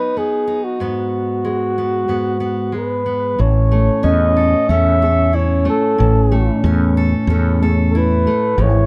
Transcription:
Already playing: steel-string acoustic guitar F#3 B3 D#4 B4, flugelhorn B4
0.17 steel-string acoustic guitar B3, flugelhorn G#4
0.47 steel-string acoustic guitar D#4
0.64 flugelhorn F#4
0.80 steel-string acoustic guitar G#2 B3
1.45 steel-string acoustic guitar G#3
1.78 steel-string acoustic guitar B3
2.08 steel-string acoustic guitar G#2 B3
2.40 steel-string acoustic guitar B3
2.72 steel-string acoustic guitar G#3
2.77 flugelhorn B4
3.06 steel-string acoustic guitar B3
3.39 fretless electric bass A1, steel-string acoustic guitar A2, felt piano E3, french horn C#4, flugelhorn C#5
3.72 steel-string acoustic guitar A3, felt piano A3
4.03 fretless electric bass E2, steel-string acoustic guitar C#4, felt piano C#4, flugelhorn D#5
4.37 steel-string acoustic guitar A4
4.69 fretless electric bass E2, felt piano A3, steel-string acoustic guitar C#4, flugelhorn E5
5.02 felt piano A3 C#4 G#4, steel-string acoustic guitar A4
5.33 steel-string acoustic guitar E4, flugelhorn C#5
5.65 steel-string acoustic guitar A3, felt piano A3
5.70 flugelhorn A4
5.98 fretless electric bass A1, steel-string acoustic guitar A2, felt piano E3
6.32 steel-string acoustic guitar A3, felt piano A3
6.64 fretless electric bass E2, felt piano C#4, steel-string acoustic guitar C#4
6.97 steel-string acoustic guitar A4
7.27 fretless electric bass E2, felt piano A3, steel-string acoustic guitar C#4
7.62 felt piano A3 C#4 G#4, steel-string acoustic guitar A4
7.91 steel-string acoustic guitar E4, flugelhorn A4
7.97 flugelhorn B4
8.26 felt piano A3, steel-string acoustic guitar A3
8.58 fretless electric bass G#1, steel-string acoustic guitar G#2, felt piano E3, french horn E4, flugelhorn C#5

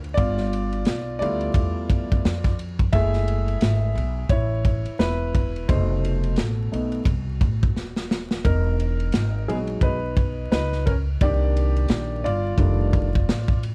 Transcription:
Already playing: upright bass D2
0.04 ride
0.14 upright bass G1, grand piano D5, kick, ride
0.18 grand piano F4
0.37 snare
0.53 ride
0.72 ride
0.85 upright bass B1, snare, hi-hat pedal, ride
1.19 upright bass D2, grand piano G3 A3 B3 E4 F4 D5, ride
1.41 ride
1.54 upright bass E2, kick, ride
1.90 kick, ride
2.12 kick
2.25 upright bass F2, snare, hi-hat pedal, ride
2.44 kick, snare
2.59 ride
2.79 kick, ride
2.93 upright bass F#1, grand piano G#3 A3 E4 G#4 E5, kick, ride
3.13 snare
3.28 ride
3.48 ride
3.61 upright bass G#1, snare, hi-hat pedal, ride
3.95 upright bass B1, ride
4.29 upright bass A1, grand piano E4 C#5, kick, ride
4.65 kick, ride
4.85 muted upright bass stroke, ride
4.99 upright bass E1, grand piano E4 B4, snare, hi-hat pedal, ride
5.35 kick, ride
5.56 ride
5.68 upright bass F1, grand piano B2 A3 D#4 C5, kick, ride
6.05 ride
6.24 ride
6.36 upright bass A1, snare, hi-hat pedal, ride
6.72 upright bass B1, grand piano A3 B3 D#4, ride
6.92 ride
7.05 upright bass C2, kick, ride
7.41 upright bass A1, kick, ride
7.63 kick
7.76 upright bass D#1, snare
7.96 snare
8.11 snare
8.31 snare
8.45 upright bass E1, grand piano D#4 A#4, kick, ride
8.80 ride
9.00 ride
9.12 upright bass G#1, snare, hi-hat pedal, ride
9.48 upright bass A#1, grand piano F#3 G#3 B3 D#4 G#4, ride
9.67 ride
9.81 upright bass B1, grand piano D#4 B4, kick, ride
10.17 kick, ride
10.52 upright bass C#2, grand piano D#4 B4, snare, hi-hat pedal, ride
10.72 snare
10.86 grand piano C#4 A#4, kick, ride
11.21 upright bass C2, grand piano D#3 A#3 D4 G4 D5, kick, ride
11.57 ride
11.76 ride
11.88 upright bass A#1, snare, hi-hat pedal, ride
12.24 upright bass G1, grand piano F4 D5, ride
12.58 upright bass F1, grand piano D#3 G3 A3 D4, kick, ride
12.93 kick, ride
13.15 kick
13.29 upright bass A1, snare, hi-hat pedal, ride
13.48 kick
13.63 ride

